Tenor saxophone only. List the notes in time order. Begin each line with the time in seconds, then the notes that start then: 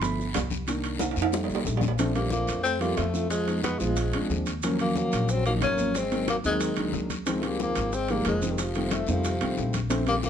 2.15 A#3
2.32 A#3
2.63 C4
2.81 A#3
2.98 A3
3.31 G#3
3.63 B3
3.79 G#3
4.81 A#3
4.98 A#3
5.31 C4
5.46 A#3
5.64 C#4
5.97 C4
6.30 A#3
6.46 G#3
7.39 A3
7.44 A#3
7.63 A#3
7.94 C4
8.11 A#3
8.28 G#3
8.52 D#3
8.61 F3
8.93 A3
9.10 F3
10.08 A#3
10.25 A#3